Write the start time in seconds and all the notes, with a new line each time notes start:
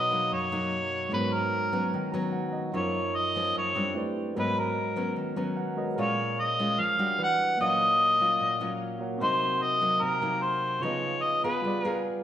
Already playing: B2 D#4 F#4 C#5 D#5 A#5
0.11 F#3 A#3 D#4
0.31 F#2 C#5
0.52 F#3 A#3 D#4
1.09 G#2 F#3 G#3 B3 C#4 D#4 F#4
1.13 B3 A#4 B4 C#5
1.33 A#4
1.73 F#3 B3 C#4
1.94 D#3
2.12 F#3 B3 C#4 A#5
2.33 F#5
2.53 D#5
2.73 F#2 F3 A#3 C#4 D#4 F4 A#4 C#5
2.77 C#5
3.16 D#5
3.36 F3 A#3 C#4
3.56 F#2 C#5
3.75 G3 C4 D4
3.94 A3 E4 G4 B4 C5 D5
4.33 G#2 F#3 G#3 B3 F#4 A#4
4.38 C#4 B4 C#5 D#5
4.59 A#4
4.96 F#3 B3 C#4
5.16 D#3
5.36 F#3 B3 C#4 A#5
5.57 F#5
5.76 G#3 F#4 A#4 B4 C#5 D#5
5.95 A#2 G#3 C#4 F4 G#4 A#4
5.99 C#5 F5
6.40 D#5
6.59 G#3 C#4 F4
6.78 F3 F5
6.99 G3 D4 F#4
7.18 E3 B4 D5 F#5
7.23 F#5
7.57 A#2 F#3 A#3 C#4 F4 A#4 D#5
7.62 C#5 F5
8.20 F#3 C#4 F4
8.40 A#2
8.61 F#3 C#4 F4
8.99 A#3 F#4 A#4 C#5 F#5
9.18 C3 F#3 C4 F#4 A#4
9.22 A#3 D#4 C5 D#5
9.63 D#5
9.82 F#3 A#3 D#4
10.02 C3 A#4
10.22 F#3 A#3 D#4
10.42 C5
10.80 C#3 F3 B3 D#4 F4 G#4 C#5
10.85 B4 D#5
11.23 D#5
11.44 B3 F4 G#4 B4
11.61 G3 F4 G#4
11.66 B4 D5
11.85 B3 F4 G#4 A#4